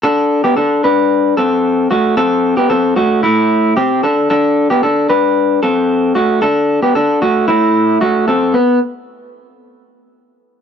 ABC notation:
X:1
M:4/4
L:1/16
Q:1/4=113
K:Dmix
V:1 name="Clean electric guitar"
[DA]3 [B,G] [DA]2 [DB]4 [CA]4 [A,F]2 | [CA]3 [B,G] [CA]2 [A,F]2 [A,E]4 [CG]2 [DA]2 | [DA]3 [B,G] [DA]2 [DB]4 [CA]4 [A,F]2 | [DA]3 [B,G] [DA]2 [A,F]2 [A,E]4 [A,F]2 [CA]2 |
B,2 z12 z2 |]